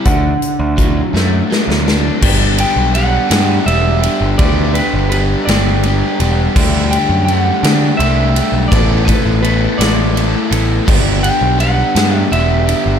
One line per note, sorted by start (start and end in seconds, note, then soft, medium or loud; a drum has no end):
0.05 0.33 D2 loud
0.05 1.87 D3 medium
0.05 1.46 F#5 medium
0.05 kick loud
0.05 closed hi-hat medium
0.42 closed hi-hat medium
0.59 1.00 D2 loud
0.78 1.49 F#3 medium
0.78 kick medium
0.78 closed hi-hat medium
1.14 1.41 F#2 medium
1.14 2.22 A3 medium
1.14 snare medium
1.50 2.22 F#3 medium
1.50 snare medium
1.68 2.09 D2 medium
1.68 snare medium
1.86 2.22 D4 medium
1.86 snare medium
2.21 2.63 G1 loud
2.21 2.94 G3 medium
2.21 2.60 B3 medium
2.21 2.59 D4 loud
2.21 2.57 G4 loud
2.21 kick loud
2.21 crash loud
2.57 2.95 B3 medium
2.57 2.96 D4 medium
2.57 2.96 G4 medium
2.57 2.94 G5 loud
2.57 ride medium
2.76 3.17 B1 medium
2.94 3.66 G3 medium
2.94 3.31 B3 medium
2.94 3.30 D4 medium
2.94 3.29 G4 medium
2.94 3.66 F#5 loud
2.94 ride medium
3.29 3.58 G2 medium
3.29 3.66 B3 medium
3.29 3.68 D4 medium
3.29 3.69 G4 medium
3.29 snare loud
3.29 ride loud
3.66 4.07 E1 loud
3.66 4.38 G3 medium
3.66 4.04 B3 medium
3.66 4.04 D4 medium
3.66 4.02 G4 medium
3.66 4.38 E5 medium
3.66 ride medium
4.03 4.38 B3 medium
4.03 4.40 D4 medium
4.03 4.41 G4 medium
4.03 ride medium
4.21 4.34 G1 medium
4.38 4.80 D2 loud
4.38 5.10 G3 medium
4.38 4.77 B3 medium
4.38 4.76 D4 loud
4.38 4.75 G4 medium
4.38 4.72 D5 medium
4.38 kick loud
4.38 ride loud
4.74 5.11 B3 medium
4.74 5.12 D4 medium
4.74 5.14 G4 medium
4.74 5.08 B4 medium
4.74 ride medium
4.94 5.34 G1 loud
5.10 5.83 G3 medium
5.10 5.49 B3 medium
5.10 5.47 D4 medium
5.10 5.19 B4 medium
5.10 ride medium
5.14 5.46 G4 medium
5.45 6.02 G1 medium
5.45 5.84 D4 medium
5.45 5.85 G4 medium
5.45 6.23 D5 medium
5.45 ride medium
5.50 5.83 B3 medium
5.50 snare loud
5.83 6.54 G3 medium
5.83 6.21 B3 medium
5.83 6.20 D4 medium
5.83 6.19 G4 loud
5.83 ride medium
6.20 6.47 E1 loud
6.20 6.55 B3 medium
6.20 6.54 D4 medium
6.20 6.53 G4 medium
6.20 ride medium
6.56 6.96 D2 loud
6.56 7.28 D3 medium
6.56 7.26 G3 medium
6.56 6.93 A3 loud
6.56 6.92 D4 medium
6.56 6.90 G4 loud
6.56 kick loud
6.56 crash loud
6.91 7.28 A3 soft
6.91 7.28 D4 medium
6.91 7.29 G4 medium
6.91 7.25 G5 medium
6.91 ride medium
7.09 7.50 F#2 medium
7.25 7.98 G3 medium
7.25 7.64 A3 medium
7.25 7.36 G5 loud
7.25 ride medium
7.30 7.63 D4 medium
7.30 7.62 G4 medium
7.36 7.97 F#5 loud
7.63 7.90 D3 medium
7.63 7.99 A3 medium
7.63 8.00 D4 medium
7.63 8.01 G4 medium
7.63 snare loud
7.63 ride loud
7.97 8.40 C2 loud
7.97 8.69 G3 medium
7.97 8.37 A3 medium
7.97 8.36 D4 medium
7.97 8.68 E5 loud
7.97 ride medium
8.02 8.34 G4 medium
8.35 8.70 A3 medium
8.35 8.70 D4 medium
8.35 8.69 G4 medium
8.35 ride medium
8.52 8.66 B1 medium
8.68 9.13 A1 loud
8.68 9.41 A3 medium
8.68 9.07 D5 loud
8.68 kick loud
8.72 9.09 B3 medium
8.72 9.07 E4 loud
8.72 9.05 A4 loud
8.72 ride loud
9.05 9.43 E4 medium
9.05 9.44 A4 medium
9.05 9.41 B4 medium
9.05 kick medium
9.05 ride medium
9.09 9.43 B3 medium
9.25 9.66 A1 loud
9.42 10.14 A3 medium
9.42 9.80 B3 medium
9.42 9.78 E4 medium
9.42 9.77 A4 medium
9.42 9.77 B4 medium
9.42 ride medium
9.78 10.34 A1 medium
9.78 10.15 B3 medium
9.78 10.15 E4 medium
9.78 10.16 A4 medium
9.78 10.56 D5 medium
9.78 ride loud
9.82 snare loud
10.15 10.85 A3 medium
10.15 10.52 B3 medium
10.15 10.51 E4 medium
10.15 10.49 A4 medium
10.15 ride medium
10.50 10.79 A1 loud
10.50 10.86 B3 medium
10.50 10.86 E4 medium
10.50 10.85 A4 medium
10.50 ride medium
10.86 11.29 G1 loud
10.86 11.58 G3 medium
10.86 11.24 B3 medium
10.86 11.23 D4 loud
10.86 11.22 G4 loud
10.86 kick loud
10.86 crash loud
11.22 11.58 B3 medium
11.22 11.59 D4 medium
11.22 11.60 G4 medium
11.22 11.57 G5 loud
11.22 ride medium
11.41 11.82 B1 medium
11.58 12.31 G3 medium
11.58 11.96 B3 medium
11.58 11.96 D4 medium
11.58 11.94 G4 medium
11.58 12.15 F#5 loud
11.58 ride medium
11.95 12.23 G2 medium
11.95 12.31 B3 medium
11.95 12.33 D4 medium
11.95 12.34 G4 medium
11.95 snare loud
11.95 ride medium
12.15 12.32 E5 loud
12.31 12.73 E1 medium
12.31 12.99 G3 medium
12.31 12.68 B3 medium
12.31 12.68 D4 medium
12.31 12.67 G4 medium
12.31 12.99 E5 loud
12.31 ride medium
12.67 12.99 B3 medium
12.67 12.99 D4 medium
12.67 12.99 G4 medium
12.67 ride medium
12.86 12.99 G1 medium